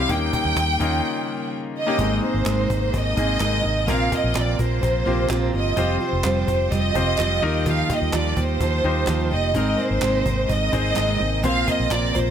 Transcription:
Already playing: G3 C4
0.00 E4 G4
0.09 D#2 C#3 D#3 A#3 C#4 D#4 G4 G5, cajon bass
0.33 cajon bass
0.45 D#2
0.56 D#2, cajon slap
0.80 D#2 A#3 C#4 D#4 F4, cajon bass
1.78 D#5
1.86 A#3 C#4 D#4 G4
1.98 G#1 G#2 C3 G#3 A#3 C4 D#4 G#4 A#4, cajon bass
2.21 C4 D#4 A#4 C5, cajon slap
2.34 G#1
2.45 G#1 G#3 C4 D#4 A#4, cajon slap, clap
2.69 G#1 C4 D#4 A#4, cajon bass
2.93 G#1 G#3 C4 D#4 A#4 D#5, cajon bass
3.17 G#1 A#3 C4 D#4 G#4 A#4, cajon bass
3.40 G#1 G#3 C4 D#4 A#4, cajon slap, clap
3.63 G#1 C4 D#4 A#4
3.87 A#1 A#2 F3 A#3 C4 F4 A#4 F5, cajon bass
4.10 C4 F4 A#4 D#5, cajon bass
4.24 A#1
4.34 A#1 A#3 C4 F4 A#4 D5, cajon slap, clap
4.58 A#1 C4 F4 A#4 C5, cajon bass
4.71 cajon slap
4.82 A#1 A#3 C4 F4 A#4, cajon bass
5.05 A#1 A#3 C4 F4 G4 A#4, cajon slap
5.29 A#1 A#3 C4 F4 A#4, cajon slap, clap
5.53 G1 C4 F4 A#4 D#5
5.76 F1 F3 G3 C4 F4 G4 C5, cajon bass
6.00 C4 F4 G4 C5, cajon slap
6.13 F1
6.24 F1 F3 G3 C4 F4 G4, cajon slap, clap
6.47 F1 C4 F4 G4, cajon bass
6.60 cajon slap
6.71 F1 G3 C4 F4 G4 D#5, cajon bass
6.94 F1 C4 F4 G4 C5, cajon bass
7.18 F1 F3 G3 C4 F4 G4, cajon slap, clap
7.42 D#2 D#3 A#3 D#4 F4 G4 A#4
7.66 D#3 F3 A#3 F4 G4 F5, cajon bass
7.89 A#3 F4 G4 D#5, cajon bass
8.02 D#2
8.13 D#2 D#3 F3 A#3 F4 G4 D5, cajon slap, clap
8.36 D#2 A#3 F4 G4 C5, cajon bass
8.60 D#2 F3 A#3 F4 G4, cajon bass
8.84 D#2 A#3 D#4 F4 G4 C5, cajon slap
9.07 D#2 D#3 F3 A#3 F4 G4, cajon slap, clap
9.31 F1 A#3 F4 G4 D#5, cajon slap
9.54 G#1 G#2 C3 G#3 C4 D#4 G#4 A#4, cajon bass
9.77 C4 D#4 A#4 C5, cajon slap
9.91 G#1
10.01 G#1 G#3 C4 D#4 A#4, cajon slap, clap
10.25 G#1 C4 D#4 A#4, cajon bass
10.48 G#1 G#3 C4 D#4 A#4 D#5, cajon bass
10.72 G#1 C4 D#4 G#4 A#4 C5, cajon bass
10.96 G#1 G#3 C4 D#4 A#4, cajon slap, clap
11.19 G#1 C4 D#4 A#4
11.43 A#1 A#2 C3 F3 A#3 C4 F4 A#4 C5 F5, cajon bass
11.66 C4 F4 A#4 D#5, cajon bass
11.80 A#1
11.90 A#1 A#3 C4 F4 A#4 D5, cajon slap, clap
12.14 A#1 C4 F4 A#4 C5, cajon bass
12.27 cajon slap

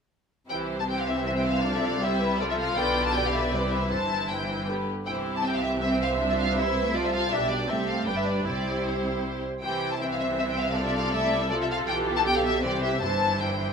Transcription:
0.49 C2 C3 E3 E4 G4 C5 G5
0.80 A5
0.87 E3 C4 G4 G5
0.99 F5
1.07 E5
1.26 C5 E5
1.37 G5
1.46 F5
1.64 F3 D4 A4 D5
1.75 E5
1.84 F5
2.02 G3 E4 G4 C5 E5
2.21 B4
2.39 F3 F4 A4 D5
2.50 E5
2.58 F5
2.77 B1 B2 D3 B4 D5 G5
3.05 A5
3.14 G4 B4 D5 G5
3.25 F5
3.32 E5
3.52 C2 C3 E3 G4 C5 D5
3.72 E5
3.90 G1 G2 E3 E4 C5 A5
4.29 G5
4.68 D3 B3 G4 B4
5.06 C2 C3 E3 E4 G4 C5 G5
5.36 A5
5.44 E3 C4 E5 G5
5.55 F5
5.63 E5
5.81 C4 C5 E5
5.92 G5
6.02 F5
6.19 F3 D4
6.30 E5
6.39 F5
6.57 G3 E4 B4 C5 E5
6.76 A3
6.93 F3 F4 A4 D5
7.05 E5
7.13 F5
7.31 B1 B2 G3 D4 G4 D5 E5
7.50 D5
7.68 C2 C3 A3 C4 G4 A4 E5
7.88 F5
8.06 G1 G2 G3 D4 B4 G5
8.16 E5
8.26 D5
8.45 C2 C3 G3 E4 G4 C5 D5
8.84 C5
9.61 C2 C3 E3 E4 G4 C5 G5
9.92 A5
10.00 E3 C4 C5 E5 G5
10.12 F5
10.20 E5
10.38 E5
10.49 G5
10.58 F5
10.74 F3 D4 A4 D5
10.86 E5
10.95 F5
11.12 A3 E4 E5
11.32 G3
11.49 F3 F4 A4 D5
11.62 E5
11.71 F5
11.87 B1 B2 E3 G4 G5
12.17 A5
12.25 D3 G4 G5
12.36 F5
12.45 E5
12.62 C2 C3 E3 G4 C5 D5
12.83 E5
13.00 G1 G2 E3 E4 C5 A5
13.40 G5

